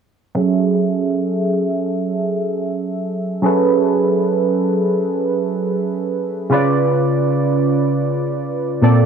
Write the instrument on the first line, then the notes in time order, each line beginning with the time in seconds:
synth keys
0.35 F#3 C#4 G#4 A4
3.42 F#3 C#4 G#4 A4 B4
6.50 C#3 C#4 F4 B4
6.54 D5
8.82 A#2 A#3 C4 A4 D5